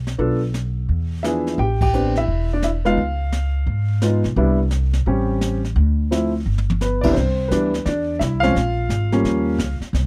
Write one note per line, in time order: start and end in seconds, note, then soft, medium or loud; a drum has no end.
0.00 0.15 B1 medium
0.07 snare soft
0.18 0.85 B1 medium
0.18 0.39 B3 medium
0.18 0.39 D4 medium
0.18 0.39 F4 medium
0.18 0.40 A4 medium
0.18 brush sweep soft
0.18 kick soft
0.54 snare soft
0.54 hi-hat pedal soft
0.89 1.55 E2 medium
0.89 brush sweep medium
0.89 kick soft
1.23 1.59 F3 medium
1.23 1.59 B3 medium
1.23 1.59 D4 soft
1.23 1.56 E4 medium
1.23 1.59 G#4 medium
1.23 1.59 E5 medium
1.23 snare medium
1.23 hi-hat pedal medium
1.47 snare soft
1.58 2.24 A1 medium
1.58 1.80 G4 medium
1.58 1.81 G5 medium
1.58 brush sweep soft
1.58 kick soft
1.81 1.94 G4 medium
1.81 2.17 G5 medium
1.81 kick medium
1.81 ride medium
1.93 2.13 B3 medium
1.93 2.14 C4 medium
1.93 2.14 D4 medium
1.93 2.14 G4 medium
1.93 hi-hat pedal soft
2.16 2.49 E4 medium
2.16 2.49 E5 loud
2.16 snare soft
2.27 2.94 E1 medium
2.27 brush sweep soft
2.27 kick soft
2.53 2.64 D4 medium
2.53 2.64 D5 medium
2.62 2.69 E4 medium
2.62 2.69 E5 medium
2.62 snare medium
2.62 hi-hat pedal soft
2.85 2.96 G#3 medium
2.85 2.96 B3 medium
2.85 2.96 D#4 medium
2.85 2.96 F4 medium
2.85 4.21 F5 medium
2.85 snare soft
2.97 3.63 C#2 medium
2.97 brush sweep soft
2.97 kick soft
3.32 snare medium
3.32 hi-hat pedal soft
3.66 4.20 G#2 medium
3.66 brush sweep soft
3.66 kick soft
4.02 4.22 G#3 medium
4.02 4.22 B3 medium
4.02 4.23 D#4 medium
4.02 4.23 F4 medium
4.02 snare medium
4.02 hi-hat pedal medium
4.24 4.36 B1 medium
4.24 snare soft
4.36 5.03 C2 loud
4.36 4.57 G3 medium
4.36 4.57 B3 medium
4.36 4.57 D4 medium
4.36 4.58 E4 medium
4.36 brush sweep soft
4.36 kick soft
4.71 snare medium
4.71 hi-hat pedal soft
4.93 snare soft
5.06 5.72 A1 medium
5.06 5.59 G3 medium
5.06 5.60 C4 medium
5.06 5.60 C#4 medium
5.06 5.60 G4 medium
5.06 brush sweep soft
5.06 kick soft
5.41 snare medium
5.41 hi-hat pedal medium
5.65 snare soft
5.76 6.42 D2 medium
5.76 brush sweep soft
5.76 kick soft
6.11 6.31 F3 medium
6.11 6.31 A3 medium
6.11 6.31 C4 medium
6.11 6.32 E4 medium
6.11 snare medium
6.11 hi-hat pedal medium
6.46 7.12 G1 medium
6.58 high tom medium
6.70 mid tom medium
6.81 7.03 B3 medium
6.81 7.02 B4 medium
6.81 snare medium
6.81 hi-hat pedal soft
7.01 7.14 C2 medium
7.01 7.14 E3 medium
7.01 7.14 G3 medium
7.01 7.14 B3 medium
7.01 7.15 D4 medium
7.01 7.15 E4 medium
7.01 7.13 D5 medium
7.01 kick medium
7.01 crash medium
7.13 7.49 C2 medium
7.13 7.48 C4 medium
7.13 7.46 C5 medium
7.13 brush sweep soft
7.13 kick soft
7.13 snare soft
7.48 7.84 D2 medium
7.48 7.71 E3 medium
7.48 7.71 G3 soft
7.48 7.71 B3 medium
7.48 7.71 D4 medium
7.48 7.81 B4 medium
7.48 kick soft
7.48 snare medium
7.48 hi-hat pedal medium
7.74 snare soft
7.85 8.19 E2 medium
7.85 8.19 D4 medium
7.85 8.17 D5 medium
7.85 brush sweep medium
7.85 kick soft
7.85 snare soft
8.19 8.54 C2 medium
8.19 8.42 E4 medium
8.19 8.40 E5 medium
8.19 kick soft
8.19 snare medium
8.19 hi-hat pedal medium
8.40 8.53 F3 medium
8.40 8.54 G#3 medium
8.40 8.54 C4 medium
8.40 8.54 C#4 medium
8.40 9.77 F4 medium
8.40 9.76 F5 loud
8.40 snare soft
8.55 8.88 A#1 medium
8.55 brush sweep soft
8.55 kick soft
8.55 snare soft
8.89 9.23 G#1 medium
8.89 kick soft
8.89 snare medium
8.89 hi-hat pedal soft
9.12 9.56 F3 medium
9.12 9.56 G3 medium
9.12 9.57 A#3 medium
9.12 9.57 C#4 medium
9.12 snare soft
9.25 9.58 D#2 medium
9.25 brush sweep medium
9.25 kick soft
9.25 snare soft
9.58 9.79 C#2 medium
9.58 kick soft
9.58 snare medium
9.58 hi-hat pedal medium
9.80 muted upright bass stroke soft
9.80 snare soft
9.93 10.07 C2 medium
9.93 brush sweep medium
9.93 kick soft
9.93 snare soft